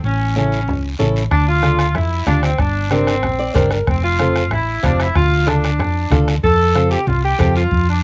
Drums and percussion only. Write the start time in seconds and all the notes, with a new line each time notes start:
0.04 high conga, long guiro
0.36 high conga, short guiro
0.52 short guiro
0.68 high conga, low conga, long guiro
1.00 high conga, short guiro
1.16 short guiro
1.31 bombo low, bombo rim, high conga, long guiro
1.63 bombo rim, high conga, short guiro
1.79 bombo rim, short guiro
1.95 bombo rim, high conga, low conga, long guiro
2.27 bombo low, bombo rim, high conga, short guiro
2.43 bombo rim, short guiro
2.58 bombo low, bombo rim, high conga, long guiro
2.90 bombo rim, high conga, short guiro
3.07 bombo rim, short guiro
3.23 bombo rim, high conga, low conga, long guiro
3.55 bombo low, bombo rim, high conga, short guiro
3.71 bombo rim, short guiro
3.87 bombo low, bombo rim, high conga, long guiro
4.19 bombo rim, high conga, short guiro
4.36 bombo rim, short guiro
4.51 bombo rim, high conga, low conga, long guiro
4.84 bombo low, bombo rim, high conga, short guiro
5.00 bombo rim, short guiro
5.16 bombo low, bombo rim, high conga, low conga, long guiro
5.48 bombo rim, high conga, short guiro
5.64 bombo rim, short guiro
5.80 bombo rim, high conga, low conga, long guiro
6.10 bombo low, bombo rim, high conga, low conga, short guiro
6.28 bombo rim, short guiro
6.43 bombo low, high conga, long guiro
6.75 bombo rim, high conga, short guiro
6.91 short guiro
7.07 high conga, low conga, long guiro
7.39 bombo low, bombo rim, high conga, short guiro
7.56 short guiro
7.71 bombo low, high conga, long guiro